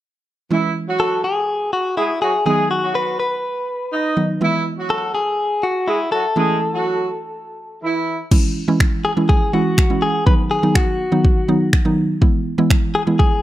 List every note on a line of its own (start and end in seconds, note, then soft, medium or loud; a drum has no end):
0.51 2.42 E3 medium
0.51 0.73 E3 medium
0.51 2.42 G#3 medium
0.51 2.42 C#4 medium
0.51 0.73 E4 medium
0.51 2.43 E4 medium
0.87 1.22 F#3 medium
0.87 1.22 F#4 medium
1.00 1.24 A4 medium
1.24 1.73 G#4 medium
1.73 1.97 F#4 medium
1.97 2.09 G#3 medium
1.97 2.21 E4 medium
1.97 2.08 G#4 medium
2.22 2.33 F#3 medium
2.22 2.33 F#4 medium
2.22 2.45 G#4 medium
2.46 4.13 D#3 medium
2.46 4.13 F#3 medium
2.46 2.68 G#3 medium
2.46 4.14 B3 medium
2.46 4.14 D#4 medium
2.46 2.68 G#4 medium
2.46 2.70 G#4 medium
2.71 2.95 F#4 medium
2.83 3.17 F#3 medium
2.83 3.17 F#4 medium
2.95 3.18 B4 loud
3.20 4.13 B4 medium
3.92 4.27 D#4 medium
3.92 4.27 D#5 medium
4.17 4.41 D#3 soft
4.17 4.41 F#3 soft
4.17 4.40 B3 soft
4.17 4.41 D#4 medium
4.41 6.32 E3 medium
4.41 4.63 E3 medium
4.41 6.32 G#3 medium
4.41 6.33 B3 medium
4.41 4.63 E4 loud
4.41 6.33 E4 medium
4.78 5.13 F#3 medium
4.78 5.12 F#4 medium
4.90 5.14 A4 loud
5.15 5.65 G#4 loud
5.63 5.88 F#4 medium
5.88 5.99 G#3 medium
5.88 6.12 E4 medium
5.88 5.98 G#4 medium
6.12 6.23 F#3 medium
6.12 6.23 F#4 medium
6.12 7.79 A4 medium
6.36 8.27 E3 medium
6.36 6.59 G#3 medium
6.36 8.28 A3 medium
6.36 8.28 C#4 medium
6.36 8.28 E4 medium
6.36 6.58 G#4 medium
6.73 7.08 F#3 medium
6.73 7.07 F#4 medium
7.83 8.18 E3 medium
7.83 8.17 E4 medium
8.31 8.61 E3 medium
8.31 8.61 G#3 medium
8.31 8.61 C#4 medium
8.31 8.61 E4 medium
8.31 kick loud
8.31 crash medium
8.68 9.08 E3 medium
8.68 9.08 G#3 medium
8.68 9.08 C#4 medium
8.68 9.08 E4 loud
8.80 finger snap loud
8.80 kick loud
9.05 9.11 G#4 medium
9.17 9.47 E3 medium
9.17 9.47 G#3 medium
9.17 9.47 C#4 medium
9.17 9.47 E4 medium
9.29 9.52 G#4 medium
9.29 kick loud
9.53 9.83 E3 medium
9.53 9.83 G#3 medium
9.53 9.83 C#4 medium
9.53 9.83 E4 medium
9.53 10.04 F#4 medium
9.78 finger snap loud
9.78 kick loud
9.90 10.20 E3 medium
9.90 10.20 G#3 medium
9.90 10.20 C#4 medium
9.90 10.20 E4 medium
10.02 10.26 G#4 medium
10.26 10.56 D#3 medium
10.26 10.56 F#3 medium
10.26 10.56 B3 medium
10.26 10.57 D#4 medium
10.26 10.33 B4 loud
10.26 kick loud
10.51 10.76 G#4 medium
10.63 11.03 D#3 medium
10.63 11.03 F#3 medium
10.63 11.03 B3 medium
10.63 11.03 D#4 medium
10.75 11.69 F#4 medium
10.75 finger snap loud
10.75 kick loud
11.12 11.42 D#3 medium
11.12 11.42 F#3 medium
11.12 11.42 B3 medium
11.12 11.42 D#4 medium
11.25 kick loud
11.48 11.78 D#3 medium
11.48 11.78 F#3 medium
11.48 11.78 B3 medium
11.48 11.78 D#4 loud
11.73 finger snap loud
11.73 kick loud
11.85 12.15 D#3 medium
11.85 12.15 F#3 medium
11.85 12.15 B3 medium
11.85 12.15 D#4 loud
12.21 12.51 E3 medium
12.21 12.52 G#3 medium
12.21 12.52 B3 medium
12.21 12.52 E4 loud
12.21 kick loud
12.58 12.98 E3 medium
12.58 12.98 G#3 medium
12.58 12.98 B3 medium
12.58 12.98 E4 loud
12.70 finger snap loud
12.70 kick loud
12.95 13.02 G#4 medium
13.07 13.37 E3 medium
13.07 13.37 G#3 medium
13.07 13.37 B3 medium
13.07 13.37 E4 medium
13.19 13.42 G#4 medium
13.19 kick loud